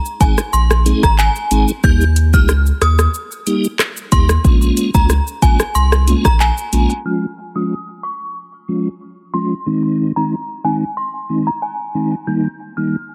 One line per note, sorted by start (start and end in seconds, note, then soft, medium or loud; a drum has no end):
0.05 shaker medium
0.20 0.34 G#1 medium
0.20 0.41 G#3 medium
0.20 0.41 C4 medium
0.20 0.41 D#4 medium
0.20 0.41 G#4 medium
0.20 0.34 G#5 medium
0.20 kick loud
0.20 closed hi-hat medium
0.20 shaker soft
0.38 cross-stick medium
0.38 shaker medium
0.53 0.93 A#1 loud
0.53 0.66 C6 medium
0.53 shaker medium
0.71 cross-stick loud
0.71 shaker soft
0.86 1.06 G#3 medium
0.86 1.06 C4 medium
0.86 1.06 D#4 medium
0.86 1.06 G#4 medium
0.86 closed hi-hat medium
0.86 shaker medium
1.03 1.29 G#1 medium
1.03 1.15 A#5 medium
1.03 kick medium
1.03 cross-stick medium
1.03 shaker medium
1.18 1.65 G#5 medium
1.18 clap medium
1.18 shaker medium
1.36 shaker medium
1.51 1.65 G#1 loud
1.51 1.71 G#3 medium
1.51 1.72 C4 medium
1.51 1.72 D#4 medium
1.51 1.72 G#4 medium
1.51 closed hi-hat medium
1.51 shaker medium
1.68 shaker medium
1.83 2.35 D#2 loud
1.83 2.04 G3 loud
1.83 2.04 A#3 medium
1.83 2.04 D#4 medium
1.83 2.04 G4 loud
1.83 1.97 G6 medium
1.83 kick loud
1.83 shaker medium
2.01 shaker medium
2.16 closed hi-hat medium
2.16 shaker medium
2.33 2.71 C#2 medium
2.33 2.52 G3 medium
2.33 2.52 A#3 medium
2.33 2.53 D#4 medium
2.33 2.53 G4 medium
2.33 2.58 F6 medium
2.33 kick loud
2.33 shaker medium
2.49 cross-stick medium
2.49 shaker medium
2.66 shaker medium
2.82 3.07 D#2 medium
2.82 3.06 D#6 medium
2.82 cross-stick medium
2.82 closed hi-hat medium
2.82 shaker soft
2.99 cross-stick loud
2.99 shaker medium
3.14 shaker medium
3.31 shaker soft
3.46 3.67 G3 medium
3.46 3.67 A#3 medium
3.46 3.67 D#4 medium
3.46 3.67 G4 medium
3.46 closed hi-hat medium
3.46 shaker medium
3.64 shaker medium
3.79 cross-stick medium
3.79 clap medium
3.79 shaker medium
3.97 shaker medium
4.12 4.38 D#2 loud
4.12 4.32 G3 medium
4.12 4.32 A#3 medium
4.12 4.32 D#4 medium
4.12 4.33 G4 medium
4.12 4.25 C6 medium
4.12 kick loud
4.12 closed hi-hat medium
4.12 shaker medium
4.29 cross-stick loud
4.29 shaker medium
4.44 4.70 A#1 loud
4.44 4.90 G#3 medium
4.44 4.90 A#3 medium
4.44 4.90 C#4 medium
4.44 4.90 F4 loud
4.44 kick loud
4.44 shaker medium
4.62 shaker medium
4.77 closed hi-hat medium
4.77 shaker medium
4.94 5.20 C#2 medium
4.94 5.13 G#3 medium
4.94 5.13 A#3 medium
4.94 5.13 C#4 medium
4.94 5.14 F4 medium
4.94 5.06 A#5 medium
4.94 kick loud
4.94 shaker medium
5.10 cross-stick medium
5.10 shaker medium
5.27 shaker medium
5.42 5.56 A#1 medium
5.42 5.63 G#3 medium
5.42 5.63 A#3 medium
5.42 5.63 C#4 medium
5.42 5.63 F4 medium
5.42 5.55 G#5 medium
5.42 kick loud
5.42 closed hi-hat medium
5.42 shaker medium
5.60 cross-stick loud
5.60 shaker medium
5.75 6.14 C2 medium
5.75 5.88 C6 medium
5.75 shaker medium
5.92 cross-stick loud
5.92 shaker soft
6.07 6.28 G#3 medium
6.07 6.28 A#3 medium
6.07 6.28 C#4 medium
6.07 6.28 F4 medium
6.07 closed hi-hat medium
6.07 shaker medium
6.25 6.51 A#1 medium
6.25 6.36 A#5 medium
6.25 kick medium
6.25 cross-stick medium
6.25 shaker medium
6.40 6.87 G#5 medium
6.40 clap medium
6.40 shaker medium
6.58 shaker medium
6.73 6.86 A#1 medium
6.73 6.93 G#3 medium
6.73 6.93 A#3 medium
6.73 6.93 C#4 medium
6.73 6.93 F4 medium
6.73 closed hi-hat medium
6.73 shaker medium
6.90 shaker medium
7.05 7.26 F3 medium
7.05 7.26 G#3 medium
7.05 7.26 C#4 medium
7.05 7.26 F4 medium
7.05 7.19 F6 medium
7.55 7.74 F3 medium
7.55 7.74 G#3 medium
7.55 7.74 C#4 medium
7.55 7.74 F4 medium
7.55 7.80 D#6 medium
8.03 8.28 C#6 medium
8.68 8.89 F3 medium
8.68 8.89 G#3 medium
8.68 8.89 C#4 medium
8.68 8.89 F4 medium
9.33 9.54 F3 medium
9.33 9.54 G#3 medium
9.33 9.54 C#4 medium
9.33 9.54 F4 medium
9.33 9.47 C6 medium
9.66 10.12 D#3 medium
9.66 10.12 G#3 medium
9.66 10.12 C4 medium
9.66 10.12 D#4 medium
10.16 10.35 D#3 medium
10.16 10.35 G#3 medium
10.16 10.35 C4 medium
10.16 10.35 D#4 medium
10.16 10.28 A#5 medium
10.64 10.85 D#3 medium
10.64 10.85 G#3 medium
10.64 10.85 C4 medium
10.64 10.85 D#4 medium
10.64 10.77 G#5 medium
10.97 11.10 C6 medium
11.29 11.50 D#3 medium
11.29 11.50 G#3 medium
11.29 11.50 C4 medium
11.29 11.50 D#4 medium
11.47 11.58 A#5 medium
11.62 12.09 G#5 medium
11.94 12.15 D#3 medium
11.94 12.15 G#3 medium
11.94 12.15 C4 medium
11.94 12.15 D#4 medium
12.27 12.47 D#3 medium
12.27 12.48 G3 medium
12.27 12.48 A#3 medium
12.27 12.48 D#4 loud
12.27 12.40 G6 medium
12.77 12.96 D#3 medium
12.77 12.96 G3 medium
12.77 12.96 A#3 medium
12.77 12.96 D#4 medium
12.77 13.02 F6 medium